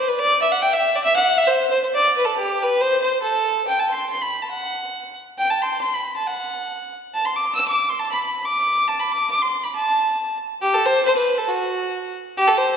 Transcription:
0.00 C5
0.09 B4
0.19 D5
0.42 E5
0.52 F#5
0.63 G5
0.73 E5
0.96 D5
1.04 E5
1.17 F#5
1.38 E5
1.47 C5
1.70 C5
1.84 C5
1.94 D5
2.17 B4
2.25 A4
2.37 G4
2.63 B4
2.81 C5
3.02 C5
3.23 A4
3.68 G5
3.80 A5
3.90 C6
4.10 C6
4.22 B5
4.42 A5
4.52 F#5
5.38 G5
5.50 A5
5.62 C6
5.81 C6
5.94 B5
6.17 A5
6.28 F#5
7.14 A5
7.26 C6
7.36 D6
7.55 E6
7.68 D6
7.90 C6
8.00 A5
8.12 B5
8.24 B5
8.45 D6
8.88 A5
9.00 B5
9.12 D6
9.30 D6
9.42 C6
9.64 B5
9.76 A5
10.62 G4
10.75 A4
10.86 C5
11.05 C5
11.17 B4
11.38 A4
11.49 F#4
12.37 G4
12.48 A4
12.58 C5

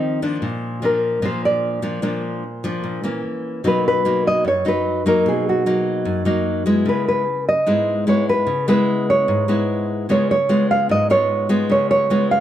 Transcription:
Already playing: D#3 F3 C4 D#4
0.22 F3 A#3 D4
0.42 A#2
0.82 F3 A#3 D4 A#4
1.22 A#2 F3 A#3 D4 C5
1.45 D5
1.82 F3 A#3 D4
2.02 A#2 F3 A#3 D4
2.64 F3 A#3 D4
2.84 A#2
3.04 E3 A#3 C#4
3.64 B2 F#3 A#3 D#4 B4
3.88 B4
4.05 F#3 A#3 D#4
4.27 D#5
4.45 F#2 C#5
4.65 F#3 D#4 B4
5.06 F#3 A#3 D#4 A#4
5.26 B2 G#4
5.49 F#4
5.66 F#3 A#3 D#4
6.05 F#2
6.25 F#3 A#3 D#4
6.66 G#3 B3 E4
6.86 C#3 B4
7.08 B4
7.49 D#5
7.67 G#2 G#3 B3 E4
8.07 G#3 B3 E4 C#5
8.29 B4
8.47 C#3
8.68 G#3 B3 E4 B4
9.10 C#5
9.28 G#2
9.48 G#3 B3 E4
10.09 C#3 G#3 B3 F4 C#5
10.31 C#5
10.49 G#3 B3 F4
10.71 F5
10.89 G#2 D#5
11.10 G#3 B3 F4 C#5
11.49 G#3 B3 F4
11.70 C#3 C#5
11.91 C#5
12.10 G#3 B3 F4
12.31 F5

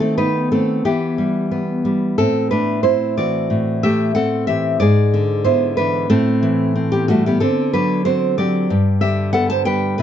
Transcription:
Already playing: D#3 A3
0.00 C4 A4
0.18 B3 D#4 B4
0.52 A3 C4 A4
0.85 E3 B3 G4
1.18 G3
1.51 B3
1.85 G3
2.18 A2 C4 A4
2.51 A3 D4 B4
2.83 C4 E4 C5
3.17 E3 F#4 D5
3.50 A2
3.83 A3 G4 E5
4.15 C4 A4 F#5
4.47 E3 G4 E5
4.80 G#2 G#4 D5
5.14 D3
5.44 B3 E4 C5
5.77 E3 D4 B4
6.10 A2 C4 A4
6.43 E3
6.76 C4
6.92 B3 G4
7.08 G3 A3 F#4
7.26 B3 G4
7.40 D3 C4 A4
7.73 F#3 D4 B4
8.05 C4 F#4 C5
8.38 F#3 G4 D5
8.70 G2
9.01 D3 G4 E5
9.33 B3 A4 F#5
9.50 C5 A5
9.65 G3 B4 G5
9.98 C3 B4

